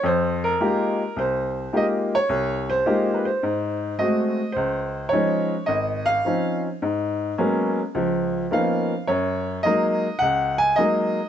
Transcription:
X:1
M:4/4
L:1/16
Q:"Swing" 1/4=106
K:Dblyd
V:1 name="Upright piano"
c2 B6 c4 e2 d2- | d2 c3- c/2 =B/2 c6 e4 | c4 d4 e2 f4 z2 | z12 f4 |
d4 e4 _g2 a2 e4 |]
V:2 name="Upright piano"
F,,4 [A,B,EFG]2 z2 C,,4 [A,B,EFG]2 z2 | C,,4 [A,B,EFG]2 z2 A,,4 [A,=A,C_G]2 z2 | D,,4 [F,A,DE]2 z2 A,,,4 [F,CDE]2 z2 | A,,4 [_G,A,B,_CD]2 z2 [D,,F,]4 [F,B,CDE]2 z2 |
_G,,4 [_G,A,B,E]2 z2 D,,4 [G,A,B,E]2 z2 |]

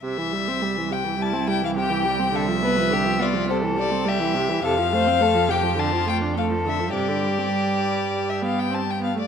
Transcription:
X:1
M:4/4
L:1/16
Q:1/4=104
K:C
V:1 name="Violin"
e6 g2 a2 g f g4 | e6 d2 c2 d2 e4 | f6 g2 a2 g2 f2 e2 | d8- d e f g a g f d |]
V:2 name="Violin"
z8 E4 G4 | A2 B2 G2 F2 A4 G4 | A2 c2 A2 G2 F4 A4 | G12- G2 z2 |]
V:3 name="Viola" clef=bass
C, E, G, C G, E, C, E, G, C G, E, C, E, G, C | D, F, B, F, D, F, B, F, C, E, G, C G, E, C, E, | C, F, A, C A, F, C, F, D, F, A, D A, F, D, F, | C, D, G, C G,6 B,2 C2 B, A, |]
V:4 name="Cello" clef=bass
C,,16- | C,,16 | F,,16 | G,,12- G,,2 z2 |]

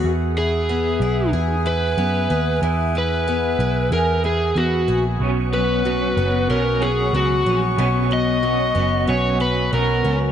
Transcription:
X:1
M:4/4
L:1/16
Q:1/4=93
K:Elyd
V:1 name="Woodwind section"
[Gefg]16- | [Gefg]16 | [B,cfc']16- | [B,cfc']16 |]
V:2 name="Electric slide guitar"
z2 G6 z2 B6 | z2 B6 A2 G2 F3 z | z2 B6 A2 G2 F3 z | z2 d6 c2 B2 A3 z |]
V:3 name="Clean electric guitar"
z16 | z16 | [B,,F,B,C]2 [F,B,C]2 [B,,F,B,C]2 [F,B,C]2 [B,,F,B,C]2 [F,B,C]2 [B,,F,B,C]2 [F,B,C]2 | [B,,F,B,C]2 [F,B,C]2 [B,,F,B,C]2 [F,B,C]2 [B,,F,B,C]2 [F,B,C]2 [B,,F,B,C]2 [F,B,C]2 |]
V:4 name="Twelve-string acoustic guitar"
z2 E2 B,2 E2 G2 E2 B,2 G2 | E,2 E2 B,2 E2 G2 E2 B,2 G2 | z2 B,2 F,2 B,2 C2 B,2 F,2 C2 | B,,2 B,2 F,2 B,2 C2 B,2 F,2 C2 |]
V:5 name="Picked electric bass" clef=bass
E,,6 B,,,2 E,,4 F,,2 D,,2 | E,,6 B,,,2 E,,4 E,,2 A,,,2 | B,,,6 F,,,2 B,,,4 C,,2 A,,,2 | B,,,6 F,,,2 B,,,4 B,,,2 C,,2 |]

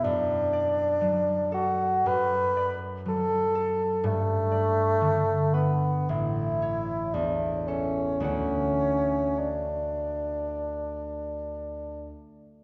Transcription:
X:1
M:4/4
L:1/8
Q:1/4=57
K:D
V:1 name="Harp"
[F,,d] d F, A F,, d F, A | G,, d D, B A,,, c E,, A | [D,,Adf]8 |]
V:2 name="Bassoon"
D3 F B z A2 | A,3 B, E2 D C | C2 D4- D z |]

